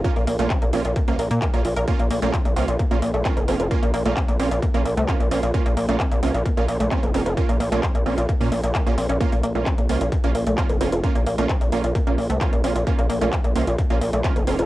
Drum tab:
HH |xxoxxxoxxxoxxxox|xxoxxxoxxxoxxxox|xxoxxxoxxxoxxxox|xxoxxxoxxxoxxxox|
CP |----x-------x---|----x-------x---|----x-------x---|----x-------x---|
BD |o---o---o---o---|o---o---o---o---|o---o---o---o---|o---o---o---o---|

HH |xxoxxxoxxooxxxox|xxoxxxoxxxoxxxox|xxoxxxoxxxoxxxox|xxoxxxoxxxoxxxox|
CP |----x-------x---|----x-------x---|----x-------x---|----x-------x---|
BD |o---o---o---o---|o---o---o---o---|o---o---o---o---|o---o---o---o---|